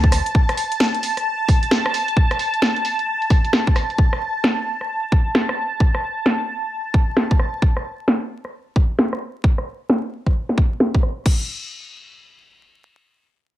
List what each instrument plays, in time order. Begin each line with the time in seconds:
Already playing: fm bass D2, analog synth pad A5
0.04 kick
0.12 cross-stick, open hi-hat
0.26 closed hi-hat
0.35 kick
0.49 cross-stick, closed hi-hat
0.57 open hi-hat
0.72 closed hi-hat
0.80 snare
0.94 closed hi-hat
1.03 open hi-hat
1.17 cross-stick, closed hi-hat
1.48 kick, open hi-hat
1.63 closed hi-hat
1.71 snare
1.86 cross-stick
1.94 open hi-hat
2.08 closed hi-hat
2.17 kick
2.31 cross-stick, closed hi-hat
2.39 open hi-hat
2.54 closed hi-hat
2.62 snare
2.76 closed hi-hat
2.85 open hi-hat
2.99 closed hi-hat
3.22 closed hi-hat
3.30 kick, open hi-hat
3.45 closed hi-hat
3.53 snare
3.67 kick
3.76 cross-stick, open hi-hat
3.90 closed hi-hat
3.98 kick
4.13 cross-stick
4.44 snare
4.81 cross-stick
5.12 kick
5.35 snare
5.49 cross-stick
5.80 kick
5.95 cross-stick
6.26 snare
6.94 kick
7.17 snare
7.31 kick
7.39 cross-stick
7.62 kick
7.77 cross-stick
8.08 snare
8.45 cross-stick
8.76 kick
8.99 snare
9.13 cross-stick
9.44 kick
9.58 cross-stick
9.89 snare
10.26 kick, cross-stick
10.49 snare
10.58 kick
10.80 snare
10.95 kick
11.03 cross-stick
11.26 kick, crash